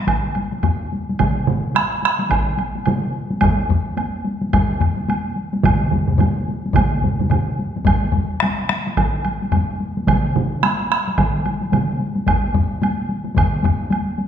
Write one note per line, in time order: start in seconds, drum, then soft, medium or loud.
0.07 taiko medium
0.07 taiko high medium
0.07 high woodblock soft
0.35 taiko high medium
0.35 high woodblock soft
0.52 taiko high soft
0.63 taiko low-mid medium
0.63 taiko high medium
0.63 high woodblock soft
0.92 taiko high soft
1.09 taiko high soft
1.19 taiko medium
1.19 taiko mid medium
1.19 taiko high medium
1.19 high woodblock soft
1.47 taiko mid medium
1.47 taiko high soft
1.75 taiko rim medium
1.75 taiko high medium
1.75 high woodblock soft
2.03 taiko rim medium
2.03 taiko high soft
2.19 taiko high soft
2.30 taiko medium
2.30 taiko high medium
2.30 high woodblock soft
2.58 taiko high medium
2.58 high woodblock soft
2.75 taiko high soft
2.86 taiko mid medium
2.86 taiko high medium
2.86 high woodblock soft
3.31 taiko high soft
3.41 taiko medium
3.41 taiko low-mid medium
3.41 taiko high medium
3.41 high woodblock medium
3.69 taiko low-mid medium
3.69 taiko high medium
3.97 taiko high medium
3.97 high woodblock soft
4.25 taiko high medium
4.42 taiko high soft
4.53 taiko loud
4.53 taiko low-mid medium
4.53 taiko high medium
4.53 high woodblock soft
4.80 taiko low-mid medium
4.80 taiko high medium
4.80 high woodblock soft
4.97 taiko high soft
5.09 taiko high medium
5.09 high woodblock soft
5.36 taiko high soft
5.53 taiko high medium
5.63 taiko medium
5.63 taiko low-mid medium
5.63 taiko mid medium
5.63 taiko high medium
5.63 high woodblock soft
5.91 taiko low-mid medium
5.91 taiko mid medium
5.91 taiko high soft
6.08 taiko low-mid medium
6.08 taiko mid medium
6.08 taiko high soft
6.18 taiko low-mid medium
6.18 taiko mid medium
6.18 taiko high medium
6.18 high woodblock soft
6.48 taiko high medium
6.66 taiko high soft
6.73 taiko loud
6.73 taiko low-mid medium
6.73 taiko mid medium
6.73 taiko high medium
6.73 high woodblock soft
7.02 taiko low-mid medium
7.02 taiko mid medium
7.02 taiko high medium
7.19 taiko low-mid medium
7.19 taiko mid medium
7.19 taiko high soft
7.30 taiko low-mid medium
7.30 taiko mid medium
7.30 taiko high medium
7.30 high woodblock soft
7.59 taiko high soft
7.76 taiko high soft
7.85 taiko medium
7.85 taiko low-mid medium
7.85 taiko high medium
7.85 high woodblock medium
8.12 taiko low-mid medium
8.12 taiko high medium
8.40 taiko rim medium
8.40 taiko high medium
8.40 high woodblock soft
8.69 taiko rim medium
8.69 taiko high soft
8.87 taiko high soft
8.97 taiko loud
8.97 taiko high medium
8.97 high woodblock soft
9.25 taiko high medium
9.25 high woodblock soft
9.42 taiko high soft
9.52 taiko low-mid medium
9.52 taiko high medium
9.52 high woodblock soft
9.80 taiko high soft
9.97 taiko high soft
10.07 taiko medium
10.07 taiko mid medium
10.07 taiko high medium
10.07 high woodblock medium
10.35 taiko mid medium
10.35 taiko high soft
10.63 taiko rim medium
10.63 taiko high medium
10.63 high woodblock soft
10.91 taiko rim medium
10.91 taiko high soft
11.08 taiko high medium
11.18 taiko loud
11.18 taiko high medium
11.18 high woodblock soft
11.46 taiko high medium
11.46 high woodblock soft
11.61 taiko high medium
11.72 taiko mid medium
11.72 taiko high medium
11.72 high woodblock soft
11.99 taiko high soft
12.15 taiko high soft
12.27 taiko medium
12.27 taiko low-mid medium
12.27 taiko high medium
12.27 high woodblock soft
12.54 taiko low-mid medium
12.54 taiko high soft
12.82 taiko high medium
12.82 high woodblock soft
13.09 taiko high soft
13.25 taiko high soft
13.35 taiko medium
13.35 taiko low-mid medium
13.35 taiko high medium
13.35 high woodblock soft
13.63 taiko low-mid medium
13.63 taiko high medium
13.63 high woodblock soft
13.90 taiko high medium
13.90 high woodblock soft
14.18 taiko high soft